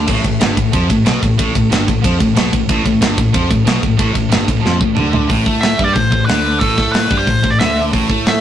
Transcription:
0.07 A1 A2, kick, crash
0.24 A1 A2, kick, ride
0.40 G1 G2, snare, ride
0.57 A1 A2, kick, ride
0.73 F2 F3, kick, ride
0.90 A1 A2, kick, ride
1.06 B1 B2, snare, ride
1.22 A1 A2, kick, ride
1.39 A1 A2, kick, ride
1.55 A1 A2, kick, ride
1.72 G1 G2, snare, ride
1.88 A1 A2, kick, ride
2.04 F2 F3, kick, ride
2.20 A1 A2, kick, ride
2.36 B1 B2, snare, ride
2.53 A1 A2, kick, ride
2.69 A1 A2, kick, ride
2.85 A1 A2, kick, ride
3.01 G1 G2, snare, ride
3.18 A1 A2, kick, ride
3.34 F2 F3, kick, ride
3.50 A1 A2, kick, ride
3.66 B1 B2, snare, ride
3.83 A1 A2, kick, ride
3.99 A1 A2, kick, ride
4.15 A2, kick, ride
4.32 G1 G2, snare, ride
4.48 A1 A2, kick, ride
4.61 F2 F3
4.66 F3, snare
4.81 A1 A2, kick
4.97 D2 D3, mid tom
5.13 floor tom
5.29 A1 A2, kick, open hi-hat
5.46 A2 A3, kick
5.61 E5, snare, open hi-hat
5.79 G2 G3, kick
5.84 D5
5.93 A1 A2 C5, kick, open hi-hat
6.12 A1 A2, kick
6.25 D2 D3 B4, open hi-hat
6.30 snare
6.60 A1 A2 A4, kick, open hi-hat
6.78 A2 A3, kick, snare
6.92 B4, snare, open hi-hat
7.11 G2 G3, kick
7.18 C5
7.27 A1 A2, kick, open hi-hat
7.44 A1 A2, kick
7.50 D5
7.59 D2 D3 E5, snare, open hi-hat
7.93 A1 A2, kick, open hi-hat
8.09 A2 A3, kick
8.26 E5, snare, open hi-hat

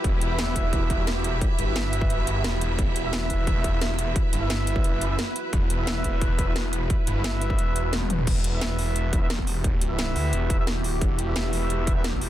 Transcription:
Already playing: E4 F#4 G4 B4 E5
0.04 E1, kick, closed hi-hat
0.21 closed hi-hat
0.30 E4 B4 E5
0.39 snare, closed hi-hat
0.56 kick, closed hi-hat
0.73 kick, closed hi-hat
0.90 kick, closed hi-hat
0.99 E4 B4 E5
1.07 snare, closed hi-hat
1.24 closed hi-hat
1.41 kick, closed hi-hat
1.59 G1, closed hi-hat
1.67 E4 B4 E5
1.76 snare, closed hi-hat
1.93 closed hi-hat
2.01 kick
2.10 G1, closed hi-hat
2.27 closed hi-hat
2.44 E1, snare, closed hi-hat
2.61 closed hi-hat
2.79 E1 B4, kick, closed hi-hat
2.96 closed hi-hat
3.04 E4 B4 E5
3.13 snare, closed hi-hat
3.30 kick, closed hi-hat
3.47 kick, closed hi-hat
3.64 kick, closed hi-hat
3.73 E4 B4 E5
3.81 snare, closed hi-hat
3.99 closed hi-hat
4.16 kick, closed hi-hat
4.33 G1, closed hi-hat
4.41 E4 B4 E5
4.50 snare, closed hi-hat
4.67 closed hi-hat
4.76 kick
4.84 F#1, closed hi-hat
5.01 closed hi-hat
5.10 E4 B4 E5
5.19 snare, closed hi-hat
5.36 closed hi-hat
5.53 E1, kick, closed hi-hat
5.70 closed hi-hat
5.79 E4 B4 E5
5.87 snare, closed hi-hat
6.04 kick, closed hi-hat
6.21 kick, closed hi-hat
6.39 kick, closed hi-hat
6.47 E4 B4 E5
6.56 snare, closed hi-hat
6.73 closed hi-hat
6.90 kick, closed hi-hat
7.07 G1, closed hi-hat
7.16 E4 B4 E5
7.24 snare, closed hi-hat
7.41 closed hi-hat
7.50 kick
7.59 E1, closed hi-hat
7.76 closed hi-hat
7.84 E4 B4 E5
7.93 snare, closed hi-hat, high tom
8.01 high tom
8.10 closed hi-hat, mid tom
8.19 mid tom
8.27 E1 E4 F#4 G4, kick, closed hi-hat, crash
8.44 closed hi-hat
8.53 E4 B4 E5
8.61 snare, closed hi-hat
8.79 E1, open hi-hat
8.96 closed hi-hat
9.13 kick, closed hi-hat
9.21 E4 B4 E5
9.30 snare, closed hi-hat
9.39 kick
9.47 open hi-hat
9.64 kick, closed hi-hat
9.77 D1
9.81 closed hi-hat
9.90 E4 B4 E5
9.99 C1, snare, closed hi-hat
10.16 D2, open hi-hat
10.33 E1, closed hi-hat
10.50 kick, closed hi-hat
10.59 E4 B4 E5
10.67 snare, closed hi-hat
10.81 D#1, open hi-hat
11.01 E1, kick, closed hi-hat
11.19 closed hi-hat
11.27 E4 B4 E5
11.36 snare, closed hi-hat
11.53 E1, open hi-hat
11.70 closed hi-hat
11.87 kick, closed hi-hat
11.96 E4 B4 E5
12.04 snare, closed hi-hat
12.13 kick
12.21 open hi-hat

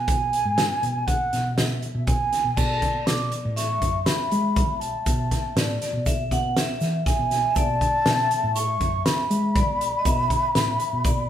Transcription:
Already playing: B2 G#5
0.08 kick, closed hi-hat
0.33 closed hi-hat
0.45 G#2
0.58 snare, closed hi-hat
0.83 B2, closed hi-hat
1.07 F#5, kick, closed hi-hat
1.33 B2, snare, closed hi-hat
1.56 B2 E5, snare, closed hi-hat
1.82 closed hi-hat
1.95 B2
2.06 G#5, kick, closed hi-hat
2.33 snare, closed hi-hat
2.44 B2
2.57 B2 D5 A5, kick, crash, shaker
2.82 kick, closed hi-hat
3.06 B2 D6, snare, closed hi-hat
3.32 closed hi-hat, shaker
3.45 A2
3.56 E5 C#6, snare, closed hi-hat, shaker
3.82 F#2, kick, closed hi-hat
4.06 B5, snare, closed hi-hat
4.31 G#3, closed hi-hat, shaker
4.56 kick, closed hi-hat
4.69 B2
4.80 A5, closed hi-hat
5.06 B2, kick, closed hi-hat, shaker
5.31 kick, snare, closed hi-hat
5.56 A2 D5, snare, closed hi-hat
5.82 D5, snare, closed hi-hat, shaker
5.93 B2
6.06 E5, kick, closed hi-hat, shaker
6.31 B2 F#5, kick, closed hi-hat
6.57 E5, snare, closed hi-hat
6.81 E3, snare, closed hi-hat, shaker
7.06 G#5, kick, snare, closed hi-hat
7.19 B2
7.31 snare, closed hi-hat
7.50 E5
7.55 B2 D5 A5, kick, closed hi-hat, shaker
7.81 kick, closed hi-hat
8.06 B2 E5, snare, closed hi-hat
8.31 closed hi-hat, shaker
8.44 A2
8.55 C#6, closed hi-hat, shaker
8.81 F#2, kick, closed hi-hat
9.05 B5, snare, closed hi-hat
9.31 G#3, closed hi-hat, shaker
9.56 D5, kick, closed hi-hat
9.68 B2
9.81 closed hi-hat
9.99 D#5
10.05 B2 E5, kick, closed hi-hat, shaker
10.30 kick, closed hi-hat
10.55 A2, snare, closed hi-hat, shaker
10.80 closed hi-hat, shaker
10.93 B2
11.04 D5, kick, closed hi-hat, shaker

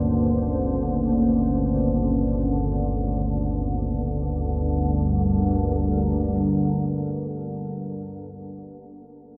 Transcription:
Already playing: G1 D2 A#3 C#4 C5
4.03 G1 D2 G3
4.20 D4
4.37 A#4

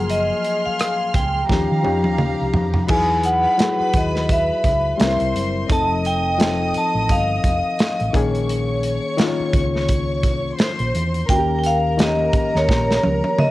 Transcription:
Already playing: F#1 F3 F#3 A#3 G#4 C6 F6
0.10 D#5, closed hi-hat
0.44 closed hi-hat
0.66 F5, muted fingered electric bass stroke
0.80 cross-stick, closed hi-hat
1.14 C#2 G5, kick, closed hi-hat
1.48 D#2 F3 C#4 D#4 G4 F5 A#5, kick, snare
1.52 G4
1.71 D#3
1.83 F2 F3 C#4 D#4 G4, high tom
2.04 D#2, high tom
2.19 mid tom
2.41 C2
2.53 F2, floor tom
2.74 floor tom
2.87 E2 F#3 D#4 E4 G#4 B4 G#5 B5, kick, crash
3.23 F#5, closed hi-hat
3.58 F#3 E4 F#4 G#4, snare, closed hi-hat
3.80 muted fingered electric bass stroke
3.94 D#2 D#5, kick, closed hi-hat
4.16 snare
4.29 E5, kick, closed hi-hat
4.64 C#2, kick, closed hi-hat
4.98 C2 G3 C4 C#4 A#4 C5 C6, snare, closed hi-hat
5.06 E4
5.20 C2, closed hi-hat
5.35 F#1, closed hi-hat
5.68 F1 F3 C4 D#4 A4 D#5 D#6, kick, closed hi-hat
5.72 A5
6.05 G5, closed hi-hat
6.38 F3 C4 D#4 A4, snare, closed hi-hat
6.74 A5, muted fingered electric bass stroke, closed hi-hat
6.95 A1
7.09 G1 F5, kick, closed hi-hat
7.44 F1, kick, closed hi-hat
7.79 snare, closed hi-hat
8.00 A1, closed hi-hat
8.13 A#1 D#3 A#3 C#4 G#4 C#5 C#6, kick, closed hi-hat
8.35 closed hi-hat
8.50 closed hi-hat
8.83 closed hi-hat
9.18 D#3 A#3 C#4 F4, snare, closed hi-hat
9.40 muted fingered electric bass stroke
9.54 C#2, kick, closed hi-hat
9.76 snare
9.89 kick, closed hi-hat
10.23 C2, kick, closed hi-hat
10.59 C5 C6, snare, closed hi-hat
10.79 A#1, closed hi-hat
10.95 E2, closed hi-hat
11.14 closed hi-hat
11.27 D#2 D#3 A#3 C#4 A#4 G5 A#5, kick, closed hi-hat
11.31 F#4
11.38 G4
11.59 G5
11.64 F5, closed hi-hat
11.97 D#3 A#3 C#4 G4, snare, closed hi-hat
12.02 D#5
12.33 muted fingered electric bass stroke, kick, closed hi-hat
12.55 D#2 C#5, snare
12.69 A#1, kick, snare
12.90 snare
13.03 C#2, high tom
13.24 high tom
13.38 D#5, mid tom

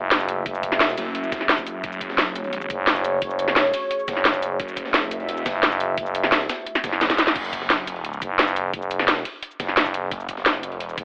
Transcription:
Already playing: F#1 A3 F#4 G#4 E5
0.11 F#1, snare, closed hi-hat
0.20 closed hi-hat, cabasa
0.29 closed hi-hat, cabasa
0.46 F#1, kick, closed hi-hat
0.55 cabasa
0.63 kick, closed hi-hat, cabasa
0.72 snare
0.80 snare, closed hi-hat
0.89 snare, cabasa
0.98 F#1, closed hi-hat, open hi-hat, cabasa
1.15 closed hi-hat
1.24 cabasa
1.32 kick, snare, closed hi-hat, cabasa
1.41 snare
1.49 snare, closed hi-hat
1.58 kick, cabasa
1.67 closed hi-hat, cabasa
1.84 F#1 C#5, kick, closed hi-hat
1.92 cabasa
2.01 kick, closed hi-hat, cabasa
2.10 snare
2.18 snare, closed hi-hat
2.36 closed hi-hat, cabasa
2.44 closed hi-hat
2.53 closed hi-hat
2.61 cabasa
2.70 F#1, kick, closed hi-hat, cabasa
2.87 F#1, snare, closed hi-hat
2.96 closed hi-hat, cabasa
3.04 closed hi-hat, cabasa
3.22 F#1, kick, closed hi-hat
3.30 cabasa
3.39 closed hi-hat, cabasa
3.48 snare
3.56 snare, closed hi-hat
3.65 snare
3.74 closed hi-hat, open hi-hat, cabasa
3.91 closed hi-hat
3.99 cabasa
4.08 F#1, kick, snare, closed hi-hat, cabasa
4.17 snare
4.25 F#1, snare, closed hi-hat
4.34 kick, cabasa
4.42 closed hi-hat, cabasa
4.60 F#1 E5, kick, closed hi-hat
4.68 cabasa
4.77 kick, closed hi-hat, cabasa
4.86 snare
4.94 snare, closed hi-hat
5.11 closed hi-hat, cabasa
5.20 F1, closed hi-hat
5.29 closed hi-hat
5.37 cabasa
5.46 F#1, kick, snare, closed hi-hat, cabasa
5.63 F#1, snare, closed hi-hat
5.72 closed hi-hat, cabasa
5.80 closed hi-hat, cabasa
5.98 F#1, kick, closed hi-hat
6.06 cabasa
6.15 closed hi-hat, cabasa
6.23 snare
6.32 snare, closed hi-hat
6.41 snare, cabasa
6.49 snare, closed hi-hat, cabasa
6.67 closed hi-hat
6.75 snare, closed hi-hat, cabasa
6.84 F#1, kick, snare, closed hi-hat, cabasa
6.93 snare
7.01 F#1, snare, closed hi-hat
7.10 kick, snare, closed hi-hat, cabasa
7.18 snare, closed hi-hat, cabasa
7.27 snare
7.36 F#1, kick, closed hi-hat, crash
7.44 cabasa
7.53 kick, closed hi-hat, cabasa
7.62 snare
7.70 snare, closed hi-hat
7.87 closed hi-hat, cabasa
7.96 closed hi-hat
8.05 closed hi-hat
8.13 cabasa
8.22 F#1, kick, closed hi-hat, cabasa
8.39 F#1, snare, closed hi-hat
8.48 closed hi-hat, cabasa
8.56 closed hi-hat, cabasa
8.74 F#1, kick, closed hi-hat
8.82 cabasa
8.91 closed hi-hat, cabasa
8.99 snare
9.08 snare, closed hi-hat
9.17 snare
9.25 closed hi-hat, open hi-hat, cabasa
9.43 closed hi-hat
9.51 cabasa
9.60 F#1, kick, snare, closed hi-hat, cabasa
9.68 snare
9.77 F#1, snare, closed hi-hat
9.86 kick, cabasa
9.94 closed hi-hat, cabasa
10.11 F#1, kick, closed hi-hat
10.20 cabasa
10.29 kick, closed hi-hat, cabasa
10.37 snare
10.46 snare, closed hi-hat
10.63 closed hi-hat, cabasa
10.71 F1, closed hi-hat
10.80 closed hi-hat
10.89 cabasa
10.98 F#1, kick, closed hi-hat, cabasa

